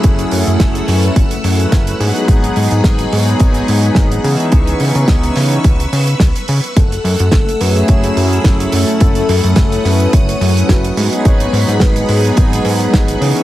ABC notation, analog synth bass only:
X:1
M:4/4
L:1/16
Q:"Swing 16ths" 1/4=107
K:F#dor
V:1 name="Analog synth bass" clef=bass
F,,,2 F,, F,, F,,,2 F,,2 F,,,2 F,,2 F,,,2 G,, z | G,,,2 G,, G,, G,,,2 G,,2 G,,,2 G,,2 G,,,2 C, z | C,,2 C, C, C,,2 C,2 C,,2 C,2 C,, z C, z | F,,,2 F,, F,, F,,,2 F,,2 F,,,2 F,,2 F,,,2 F,, z |
F,,,2 F,, F,, F,,,2 F,,2 F,,,2 F,,2 F,,,2 G,, z | G,,,2 G,, G,, G,,,2 G,,2 G,,,2 G,,2 G,,,2 C, z |]